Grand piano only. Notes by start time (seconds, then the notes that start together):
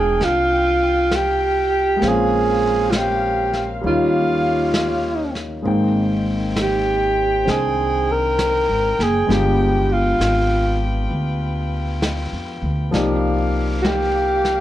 Already playing: G#3 C4 D4 D#4 F4 G5
1.96 G#3 A#3
2.02 C4 C#4
2.08 F4
3.81 G3 A#3 C#4
3.86 D#4 F4
5.62 G#3 A#3 C4
5.67 D#4 G5
7.45 C4 D4 G#4
9.27 G#3 B3 D4 F4
9.32 G4
12.91 F3 A#3 D#4 D5
12.96 G4